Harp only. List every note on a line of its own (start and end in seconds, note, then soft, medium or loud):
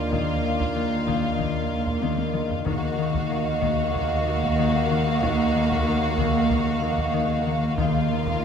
0.00 0.10 D#3 soft
0.11 0.42 D#3 medium
0.43 0.74 D#3 soft
0.75 1.05 D#3 medium
1.07 1.36 D#3 medium
1.37 1.69 D#3 medium
1.70 2.01 D#3 medium
2.02 2.31 D#3 medium
2.33 2.64 D#3 medium
2.65 2.97 D#3 medium
2.98 3.28 D#3 medium
3.29 3.60 D#3 medium
3.61 3.92 D#3 medium
3.93 4.24 D#3 medium
4.25 4.57 D#3 medium
4.58 4.89 D#3 medium
4.90 5.22 D#3 medium
5.23 5.55 D#3 medium
5.56 5.86 D#3 medium
5.87 6.17 D#3 medium
6.18 6.50 D#3 medium
6.51 6.80 D#3 medium
6.82 7.12 D#3 medium
7.13 7.44 D#3 medium
7.45 7.77 D#3 soft
7.79 8.10 D#3 medium
8.11 8.41 D#3 soft